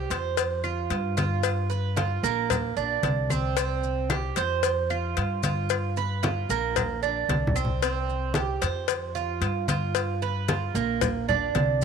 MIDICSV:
0, 0, Header, 1, 4, 480
1, 0, Start_track
1, 0, Tempo, 532387
1, 1299, Time_signature, 4, 2, 24, 8
1, 10679, End_track
2, 0, Start_track
2, 0, Title_t, "Cuban tres"
2, 0, Program_c, 0, 25
2, 94, Note_on_c, 0, 72, 78
2, 562, Note_off_c, 0, 72, 0
2, 574, Note_on_c, 0, 65, 79
2, 1042, Note_off_c, 0, 65, 0
2, 1056, Note_on_c, 0, 65, 77
2, 1523, Note_off_c, 0, 65, 0
2, 1530, Note_on_c, 0, 71, 85
2, 1767, Note_off_c, 0, 71, 0
2, 1771, Note_on_c, 0, 65, 76
2, 2008, Note_off_c, 0, 65, 0
2, 2016, Note_on_c, 0, 58, 96
2, 2483, Note_off_c, 0, 58, 0
2, 2494, Note_on_c, 0, 62, 80
2, 2962, Note_off_c, 0, 62, 0
2, 2979, Note_on_c, 0, 60, 88
2, 3211, Note_off_c, 0, 60, 0
2, 3221, Note_on_c, 0, 60, 90
2, 3685, Note_off_c, 0, 60, 0
2, 3702, Note_on_c, 0, 67, 72
2, 3933, Note_off_c, 0, 67, 0
2, 3943, Note_on_c, 0, 72, 83
2, 4406, Note_off_c, 0, 72, 0
2, 4419, Note_on_c, 0, 65, 77
2, 4884, Note_off_c, 0, 65, 0
2, 4902, Note_on_c, 0, 65, 77
2, 5365, Note_off_c, 0, 65, 0
2, 5383, Note_on_c, 0, 71, 84
2, 5613, Note_off_c, 0, 71, 0
2, 5615, Note_on_c, 0, 65, 70
2, 5849, Note_off_c, 0, 65, 0
2, 5862, Note_on_c, 0, 58, 93
2, 6325, Note_off_c, 0, 58, 0
2, 6335, Note_on_c, 0, 62, 77
2, 6802, Note_off_c, 0, 62, 0
2, 6812, Note_on_c, 0, 60, 82
2, 7043, Note_off_c, 0, 60, 0
2, 7054, Note_on_c, 0, 60, 90
2, 7521, Note_off_c, 0, 60, 0
2, 7528, Note_on_c, 0, 67, 72
2, 7765, Note_off_c, 0, 67, 0
2, 7767, Note_on_c, 0, 72, 79
2, 8238, Note_off_c, 0, 72, 0
2, 8250, Note_on_c, 0, 65, 78
2, 8719, Note_off_c, 0, 65, 0
2, 8729, Note_on_c, 0, 65, 76
2, 9199, Note_off_c, 0, 65, 0
2, 9215, Note_on_c, 0, 71, 86
2, 9449, Note_off_c, 0, 71, 0
2, 9453, Note_on_c, 0, 65, 74
2, 9688, Note_off_c, 0, 65, 0
2, 9693, Note_on_c, 0, 58, 95
2, 10161, Note_off_c, 0, 58, 0
2, 10176, Note_on_c, 0, 62, 84
2, 10642, Note_off_c, 0, 62, 0
2, 10679, End_track
3, 0, Start_track
3, 0, Title_t, "Upright bass"
3, 0, Program_c, 1, 32
3, 91, Note_on_c, 1, 41, 87
3, 779, Note_off_c, 1, 41, 0
3, 812, Note_on_c, 1, 43, 96
3, 1956, Note_off_c, 1, 43, 0
3, 2010, Note_on_c, 1, 34, 96
3, 2461, Note_off_c, 1, 34, 0
3, 2493, Note_on_c, 1, 34, 75
3, 2719, Note_off_c, 1, 34, 0
3, 2732, Note_on_c, 1, 36, 98
3, 3875, Note_off_c, 1, 36, 0
3, 3937, Note_on_c, 1, 41, 94
3, 4622, Note_off_c, 1, 41, 0
3, 4662, Note_on_c, 1, 43, 94
3, 5800, Note_off_c, 1, 43, 0
3, 5854, Note_on_c, 1, 34, 92
3, 6540, Note_off_c, 1, 34, 0
3, 6569, Note_on_c, 1, 36, 94
3, 7713, Note_off_c, 1, 36, 0
3, 7774, Note_on_c, 1, 41, 90
3, 8460, Note_off_c, 1, 41, 0
3, 8483, Note_on_c, 1, 43, 97
3, 9630, Note_off_c, 1, 43, 0
3, 9687, Note_on_c, 1, 34, 91
3, 10376, Note_off_c, 1, 34, 0
3, 10414, Note_on_c, 1, 36, 97
3, 10679, Note_off_c, 1, 36, 0
3, 10679, End_track
4, 0, Start_track
4, 0, Title_t, "Drums"
4, 97, Note_on_c, 9, 70, 73
4, 100, Note_on_c, 9, 56, 73
4, 104, Note_on_c, 9, 63, 35
4, 188, Note_off_c, 9, 70, 0
4, 190, Note_off_c, 9, 56, 0
4, 194, Note_off_c, 9, 63, 0
4, 336, Note_on_c, 9, 56, 114
4, 337, Note_on_c, 9, 63, 34
4, 341, Note_on_c, 9, 70, 94
4, 427, Note_off_c, 9, 56, 0
4, 427, Note_off_c, 9, 63, 0
4, 431, Note_off_c, 9, 70, 0
4, 575, Note_on_c, 9, 75, 71
4, 579, Note_on_c, 9, 63, 34
4, 580, Note_on_c, 9, 70, 29
4, 665, Note_off_c, 9, 75, 0
4, 669, Note_off_c, 9, 63, 0
4, 670, Note_off_c, 9, 70, 0
4, 815, Note_on_c, 9, 56, 70
4, 821, Note_on_c, 9, 70, 29
4, 822, Note_on_c, 9, 63, 36
4, 905, Note_off_c, 9, 56, 0
4, 911, Note_off_c, 9, 70, 0
4, 912, Note_off_c, 9, 63, 0
4, 1058, Note_on_c, 9, 70, 76
4, 1059, Note_on_c, 9, 56, 71
4, 1064, Note_on_c, 9, 63, 84
4, 1148, Note_off_c, 9, 70, 0
4, 1150, Note_off_c, 9, 56, 0
4, 1154, Note_off_c, 9, 63, 0
4, 1293, Note_on_c, 9, 56, 111
4, 1294, Note_on_c, 9, 70, 92
4, 1301, Note_on_c, 9, 63, 35
4, 1304, Note_on_c, 9, 75, 64
4, 1383, Note_off_c, 9, 56, 0
4, 1384, Note_off_c, 9, 70, 0
4, 1392, Note_off_c, 9, 63, 0
4, 1394, Note_off_c, 9, 75, 0
4, 1540, Note_on_c, 9, 70, 33
4, 1543, Note_on_c, 9, 63, 37
4, 1631, Note_off_c, 9, 70, 0
4, 1634, Note_off_c, 9, 63, 0
4, 1777, Note_on_c, 9, 63, 93
4, 1777, Note_on_c, 9, 70, 29
4, 1778, Note_on_c, 9, 56, 71
4, 1868, Note_off_c, 9, 56, 0
4, 1868, Note_off_c, 9, 63, 0
4, 1868, Note_off_c, 9, 70, 0
4, 2013, Note_on_c, 9, 63, 35
4, 2022, Note_on_c, 9, 70, 78
4, 2104, Note_off_c, 9, 63, 0
4, 2113, Note_off_c, 9, 70, 0
4, 2255, Note_on_c, 9, 56, 112
4, 2257, Note_on_c, 9, 75, 66
4, 2259, Note_on_c, 9, 63, 35
4, 2259, Note_on_c, 9, 64, 88
4, 2267, Note_on_c, 9, 70, 95
4, 2345, Note_off_c, 9, 56, 0
4, 2347, Note_off_c, 9, 75, 0
4, 2349, Note_off_c, 9, 63, 0
4, 2349, Note_off_c, 9, 64, 0
4, 2357, Note_off_c, 9, 70, 0
4, 2496, Note_on_c, 9, 63, 36
4, 2502, Note_on_c, 9, 70, 29
4, 2586, Note_off_c, 9, 63, 0
4, 2592, Note_off_c, 9, 70, 0
4, 2731, Note_on_c, 9, 63, 88
4, 2734, Note_on_c, 9, 56, 72
4, 2747, Note_on_c, 9, 70, 31
4, 2821, Note_off_c, 9, 63, 0
4, 2824, Note_off_c, 9, 56, 0
4, 2837, Note_off_c, 9, 70, 0
4, 2972, Note_on_c, 9, 63, 83
4, 2978, Note_on_c, 9, 75, 68
4, 2986, Note_on_c, 9, 70, 76
4, 3062, Note_off_c, 9, 63, 0
4, 3068, Note_off_c, 9, 75, 0
4, 3076, Note_off_c, 9, 70, 0
4, 3211, Note_on_c, 9, 63, 35
4, 3215, Note_on_c, 9, 56, 114
4, 3221, Note_on_c, 9, 70, 89
4, 3301, Note_off_c, 9, 63, 0
4, 3305, Note_off_c, 9, 56, 0
4, 3311, Note_off_c, 9, 70, 0
4, 3457, Note_on_c, 9, 63, 39
4, 3457, Note_on_c, 9, 70, 33
4, 3547, Note_off_c, 9, 63, 0
4, 3548, Note_off_c, 9, 70, 0
4, 3695, Note_on_c, 9, 63, 93
4, 3696, Note_on_c, 9, 70, 31
4, 3697, Note_on_c, 9, 56, 74
4, 3698, Note_on_c, 9, 75, 68
4, 3785, Note_off_c, 9, 63, 0
4, 3786, Note_off_c, 9, 70, 0
4, 3787, Note_off_c, 9, 56, 0
4, 3788, Note_off_c, 9, 75, 0
4, 3932, Note_on_c, 9, 56, 73
4, 3938, Note_on_c, 9, 63, 33
4, 3941, Note_on_c, 9, 70, 77
4, 4022, Note_off_c, 9, 56, 0
4, 4028, Note_off_c, 9, 63, 0
4, 4031, Note_off_c, 9, 70, 0
4, 4174, Note_on_c, 9, 56, 105
4, 4176, Note_on_c, 9, 63, 35
4, 4179, Note_on_c, 9, 70, 89
4, 4264, Note_off_c, 9, 56, 0
4, 4266, Note_off_c, 9, 63, 0
4, 4269, Note_off_c, 9, 70, 0
4, 4418, Note_on_c, 9, 63, 35
4, 4419, Note_on_c, 9, 70, 29
4, 4423, Note_on_c, 9, 75, 70
4, 4508, Note_off_c, 9, 63, 0
4, 4509, Note_off_c, 9, 70, 0
4, 4513, Note_off_c, 9, 75, 0
4, 4659, Note_on_c, 9, 56, 72
4, 4661, Note_on_c, 9, 63, 36
4, 4662, Note_on_c, 9, 70, 30
4, 4750, Note_off_c, 9, 56, 0
4, 4751, Note_off_c, 9, 63, 0
4, 4752, Note_off_c, 9, 70, 0
4, 4897, Note_on_c, 9, 63, 81
4, 4898, Note_on_c, 9, 70, 75
4, 4901, Note_on_c, 9, 56, 72
4, 4987, Note_off_c, 9, 63, 0
4, 4988, Note_off_c, 9, 70, 0
4, 4991, Note_off_c, 9, 56, 0
4, 5136, Note_on_c, 9, 70, 94
4, 5139, Note_on_c, 9, 56, 116
4, 5145, Note_on_c, 9, 63, 35
4, 5146, Note_on_c, 9, 75, 62
4, 5226, Note_off_c, 9, 70, 0
4, 5229, Note_off_c, 9, 56, 0
4, 5235, Note_off_c, 9, 63, 0
4, 5236, Note_off_c, 9, 75, 0
4, 5379, Note_on_c, 9, 70, 33
4, 5387, Note_on_c, 9, 63, 36
4, 5469, Note_off_c, 9, 70, 0
4, 5477, Note_off_c, 9, 63, 0
4, 5617, Note_on_c, 9, 70, 30
4, 5620, Note_on_c, 9, 56, 75
4, 5625, Note_on_c, 9, 63, 100
4, 5708, Note_off_c, 9, 70, 0
4, 5710, Note_off_c, 9, 56, 0
4, 5715, Note_off_c, 9, 63, 0
4, 5860, Note_on_c, 9, 70, 76
4, 5867, Note_on_c, 9, 63, 34
4, 5950, Note_off_c, 9, 70, 0
4, 5958, Note_off_c, 9, 63, 0
4, 6096, Note_on_c, 9, 56, 109
4, 6100, Note_on_c, 9, 70, 90
4, 6105, Note_on_c, 9, 75, 67
4, 6107, Note_on_c, 9, 63, 33
4, 6107, Note_on_c, 9, 64, 80
4, 6186, Note_off_c, 9, 56, 0
4, 6190, Note_off_c, 9, 70, 0
4, 6195, Note_off_c, 9, 75, 0
4, 6197, Note_off_c, 9, 63, 0
4, 6197, Note_off_c, 9, 64, 0
4, 6341, Note_on_c, 9, 70, 29
4, 6344, Note_on_c, 9, 63, 35
4, 6431, Note_off_c, 9, 70, 0
4, 6434, Note_off_c, 9, 63, 0
4, 6576, Note_on_c, 9, 56, 70
4, 6576, Note_on_c, 9, 70, 29
4, 6581, Note_on_c, 9, 63, 102
4, 6666, Note_off_c, 9, 70, 0
4, 6667, Note_off_c, 9, 56, 0
4, 6671, Note_off_c, 9, 63, 0
4, 6737, Note_on_c, 9, 64, 96
4, 6816, Note_on_c, 9, 70, 76
4, 6818, Note_on_c, 9, 75, 68
4, 6828, Note_off_c, 9, 64, 0
4, 6895, Note_on_c, 9, 64, 71
4, 6906, Note_off_c, 9, 70, 0
4, 6908, Note_off_c, 9, 75, 0
4, 6985, Note_off_c, 9, 64, 0
4, 7051, Note_on_c, 9, 63, 35
4, 7055, Note_on_c, 9, 56, 116
4, 7060, Note_on_c, 9, 70, 95
4, 7141, Note_off_c, 9, 63, 0
4, 7145, Note_off_c, 9, 56, 0
4, 7151, Note_off_c, 9, 70, 0
4, 7291, Note_on_c, 9, 63, 35
4, 7299, Note_on_c, 9, 70, 31
4, 7381, Note_off_c, 9, 63, 0
4, 7389, Note_off_c, 9, 70, 0
4, 7519, Note_on_c, 9, 63, 102
4, 7530, Note_on_c, 9, 56, 71
4, 7538, Note_on_c, 9, 70, 31
4, 7609, Note_off_c, 9, 63, 0
4, 7620, Note_off_c, 9, 56, 0
4, 7628, Note_off_c, 9, 70, 0
4, 7770, Note_on_c, 9, 63, 35
4, 7771, Note_on_c, 9, 56, 75
4, 7778, Note_on_c, 9, 70, 77
4, 7861, Note_off_c, 9, 56, 0
4, 7861, Note_off_c, 9, 63, 0
4, 7868, Note_off_c, 9, 70, 0
4, 8006, Note_on_c, 9, 56, 112
4, 8013, Note_on_c, 9, 63, 36
4, 8014, Note_on_c, 9, 70, 92
4, 8096, Note_off_c, 9, 56, 0
4, 8103, Note_off_c, 9, 63, 0
4, 8104, Note_off_c, 9, 70, 0
4, 8252, Note_on_c, 9, 63, 35
4, 8262, Note_on_c, 9, 70, 32
4, 8342, Note_off_c, 9, 63, 0
4, 8352, Note_off_c, 9, 70, 0
4, 8489, Note_on_c, 9, 63, 37
4, 8490, Note_on_c, 9, 56, 73
4, 8500, Note_on_c, 9, 70, 32
4, 8579, Note_off_c, 9, 63, 0
4, 8580, Note_off_c, 9, 56, 0
4, 8590, Note_off_c, 9, 70, 0
4, 8728, Note_on_c, 9, 63, 85
4, 8733, Note_on_c, 9, 70, 83
4, 8734, Note_on_c, 9, 56, 73
4, 8818, Note_off_c, 9, 63, 0
4, 8823, Note_off_c, 9, 70, 0
4, 8824, Note_off_c, 9, 56, 0
4, 8968, Note_on_c, 9, 56, 117
4, 8973, Note_on_c, 9, 63, 38
4, 8975, Note_on_c, 9, 70, 96
4, 9058, Note_off_c, 9, 56, 0
4, 9064, Note_off_c, 9, 63, 0
4, 9065, Note_off_c, 9, 70, 0
4, 9214, Note_on_c, 9, 70, 34
4, 9217, Note_on_c, 9, 63, 38
4, 9304, Note_off_c, 9, 70, 0
4, 9307, Note_off_c, 9, 63, 0
4, 9451, Note_on_c, 9, 70, 32
4, 9453, Note_on_c, 9, 56, 72
4, 9454, Note_on_c, 9, 63, 99
4, 9541, Note_off_c, 9, 70, 0
4, 9543, Note_off_c, 9, 56, 0
4, 9545, Note_off_c, 9, 63, 0
4, 9696, Note_on_c, 9, 63, 35
4, 9699, Note_on_c, 9, 70, 77
4, 9786, Note_off_c, 9, 63, 0
4, 9789, Note_off_c, 9, 70, 0
4, 9930, Note_on_c, 9, 56, 112
4, 9934, Note_on_c, 9, 70, 98
4, 9936, Note_on_c, 9, 63, 37
4, 9936, Note_on_c, 9, 64, 90
4, 10020, Note_off_c, 9, 56, 0
4, 10024, Note_off_c, 9, 70, 0
4, 10027, Note_off_c, 9, 63, 0
4, 10027, Note_off_c, 9, 64, 0
4, 10180, Note_on_c, 9, 70, 32
4, 10181, Note_on_c, 9, 63, 38
4, 10181, Note_on_c, 9, 64, 77
4, 10270, Note_off_c, 9, 70, 0
4, 10271, Note_off_c, 9, 63, 0
4, 10271, Note_off_c, 9, 64, 0
4, 10412, Note_on_c, 9, 56, 69
4, 10413, Note_on_c, 9, 70, 31
4, 10418, Note_on_c, 9, 63, 90
4, 10503, Note_off_c, 9, 56, 0
4, 10503, Note_off_c, 9, 70, 0
4, 10508, Note_off_c, 9, 63, 0
4, 10679, End_track
0, 0, End_of_file